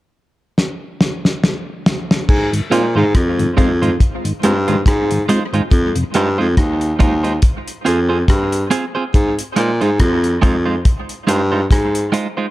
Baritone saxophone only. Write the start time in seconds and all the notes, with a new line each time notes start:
2.29 G#2
2.72 A#2
2.97 G#2
3.15 F2
3.59 F2
4.44 G2
4.86 G#2
5.72 F2
6.15 G2
6.40 F2
6.58 D#2
7.01 D#2
7.87 F2
8.29 G2
9.15 G#2
9.58 A#2
9.82 G#2
10.00 F2
10.44 F2
11.29 G2
11.71 G#2